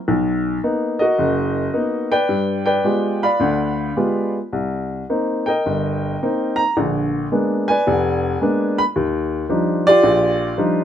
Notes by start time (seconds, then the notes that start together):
0.08 B1
0.64 A#3 B3 D#4
0.99 F#4 A#4 D#5
1.18 F#1
1.73 A#3 B3 D#4
2.12 B4 D5 G5
2.29 G2
2.66 B4 D5 G5
2.84 G#3 B3 F4 G4
3.23 D5 F5 B5
3.40 D2 D3
3.97 G#3 B3 F4 G4
4.53 C2
5.10 A#3 C4 D#4
5.46 A#4 D#5 G5
5.66 G1
6.23 A#3 C4 D#4
6.56 A#5
6.77 A#1 D3
7.31 G#3 A#3 B3 D4
7.68 B4 D5 G#5
7.87 F1
8.41 G#3 A#3 B3 D4
8.78 B5
8.96 D#2
9.49 F3 G3 D4 D#4
9.87 F4 G4 D5
10.03 A#1
10.58 F3 G3 D4 D#4